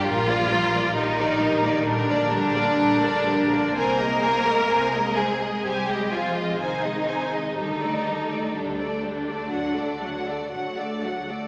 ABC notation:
X:1
M:4/4
L:1/16
Q:1/4=63
K:Gm
V:1 name="Violin section"
B d B d B d B d B d B d B d B d | _a e a e a e a e a e a e a e a e | A d A d A d A d ^f d f d f d f d |]
V:2 name="Violin section"
F4 E4 D8 | B6 _A2 G2 F2 E4 | E4 D8- D2 z2 |]
V:3 name="Viola section"
[G,G] [B,B] [G,G] [B,B] [G,G] [B,B] [G,G] [B,B] [G,G] [B,B] [G,G] [B,B] [G,G] [B,B] [G,G] [B,B] | [Cc] [_A,_A] [Cc] [A,A] [Cc] [A,A] [Cc] [A,A] [Cc] [A,A] [Cc] [A,A] [Cc] [A,A] [Cc] [A,A] | [G,G] [A,A] [G,G] [A,A] [G,G] [A,A] [G,G] [A,A] [^F,^F] [A,A] [F,F] [A,A] [F,F] [A,A] [F,F] [A,A] |]
V:4 name="Cello section" clef=bass
F,4 E,4 D,8 | B,6 _A,2 G,2 F,2 E,4 | E,4 D,8- D,2 z2 |]
V:5 name="Double bass section" clef=bass
B,,,4 B,,,4 B,,,4 B,,,4 | C,,4 C,,4 C,,4 C,,4 | D,,4 D,,4 D,,4 D,,4 |]